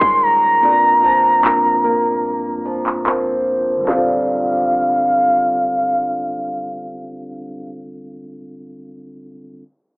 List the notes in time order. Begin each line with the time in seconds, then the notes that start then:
Already playing: A#2 D#3 G3 G#3 C#4 D#4 F4 C6
0.01 kick
0.23 A#5
0.60 G2 A#3 C4 D4 F4
0.65 A4
0.72 A#4
1.03 F3
1.41 G2 A#3 C4 D4 F4, clap
1.46 A#4
1.84 A#3
2.65 F3
2.87 clap
3.06 F3 A#3 C4, clap
3.77 D3 G3
3.84 D3 C4
3.88 G3 C4 D4 F5, snare
3.93 F4 A4